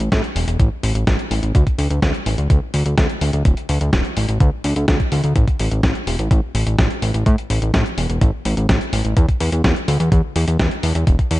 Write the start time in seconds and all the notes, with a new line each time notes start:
0.00 closed hi-hat
0.12 A2, kick, snare, closed hi-hat
0.24 closed hi-hat
0.36 E1, open hi-hat
0.47 E1, closed hi-hat
0.60 A1, kick, closed hi-hat
0.83 A1, open hi-hat
0.95 A1, closed hi-hat
1.07 A1, kick, snare, closed hi-hat
1.19 closed hi-hat
1.31 A1, open hi-hat
1.43 A1, closed hi-hat
1.55 D2, kick, closed hi-hat
1.67 kick, closed hi-hat
1.78 D2, open hi-hat
1.90 D2, closed hi-hat
2.02 D2, kick, snare, closed hi-hat
2.14 closed hi-hat
2.26 A1, open hi-hat
2.38 D2, closed hi-hat
2.50 D2, kick, closed hi-hat
2.74 D2, open hi-hat
2.86 D2, closed hi-hat
2.98 D2, kick, snare, closed hi-hat
3.10 closed hi-hat
3.21 D2, open hi-hat
3.33 D2, closed hi-hat
3.45 D1, kick, closed hi-hat
3.57 closed hi-hat
3.69 D2, open hi-hat
3.81 D2, closed hi-hat
3.93 D1, kick, snare, closed hi-hat
4.05 closed hi-hat
4.17 A1, open hi-hat
4.29 A1, closed hi-hat
4.40 D2, kick, closed hi-hat
4.64 D2, open hi-hat
4.76 D2, closed hi-hat
4.88 D2, kick, snare, closed hi-hat
5.00 kick, closed hi-hat
5.12 D2, open hi-hat
5.24 D2, closed hi-hat
5.36 A1, kick, closed hi-hat
5.48 kick, closed hi-hat
5.59 A1, open hi-hat
5.71 A1, closed hi-hat
5.83 A1, kick, snare, closed hi-hat
5.95 closed hi-hat
6.07 E1, open hi-hat
6.19 A1, closed hi-hat
6.31 A1, kick, closed hi-hat
6.55 A1, open hi-hat
6.67 A1, closed hi-hat
6.79 A1, kick, snare, closed hi-hat
6.90 closed hi-hat
7.02 A1, open hi-hat
7.14 A1, closed hi-hat
7.26 A2, kick, closed hi-hat
7.38 closed hi-hat
7.50 A1, open hi-hat
7.62 A1, closed hi-hat
7.74 A2, kick, snare, closed hi-hat
7.86 closed hi-hat
7.98 E1, open hi-hat
8.09 E1, closed hi-hat
8.21 A1, kick, closed hi-hat
8.45 A1, open hi-hat
8.57 A1, closed hi-hat
8.69 A1, kick, snare, closed hi-hat
8.81 closed hi-hat
8.93 A1, open hi-hat
9.05 A1, closed hi-hat
9.17 E2, kick, closed hi-hat
9.29 kick, closed hi-hat
9.40 E2, open hi-hat
9.52 E2, closed hi-hat
9.64 E2, kick, snare, closed hi-hat
9.76 closed hi-hat
9.88 D2, open hi-hat
10.00 E2, closed hi-hat
10.12 E2, kick, closed hi-hat
10.36 E2, open hi-hat
10.48 E2, closed hi-hat
10.59 E2, kick, snare, closed hi-hat
10.71 closed hi-hat
10.83 E2, open hi-hat
10.95 E2, closed hi-hat
11.07 E1, kick, closed hi-hat
11.19 kick, closed hi-hat
11.31 E2, open hi-hat